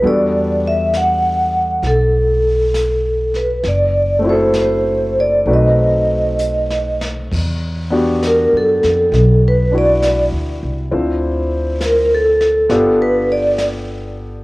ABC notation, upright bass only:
X:1
M:4/4
L:1/8
Q:"Swing" 1/4=67
K:Em
V:1 name="Upright bass" clef=bass
E,,4 B,,,4 | F,,,4 B,,,4 | E,,2- (3E,, F,, =F,, B,,,2- (3B,,, D,, C,, | D,,4 G,,,4 |]